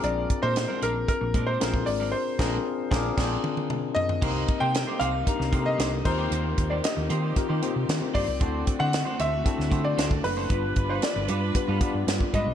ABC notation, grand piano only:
X:1
M:4/4
L:1/16
Q:1/4=115
K:Cm
V:1 name="Grand piano"
d3 c3 B2 B3 c3 d2 | c12 z2 e2- | e3 g3 f4- f e3 c2- | c3 d e4 z6 d2- |
d3 ^f3 =e4- e d3 =B2- | =B3 c d4 z6 e2 |]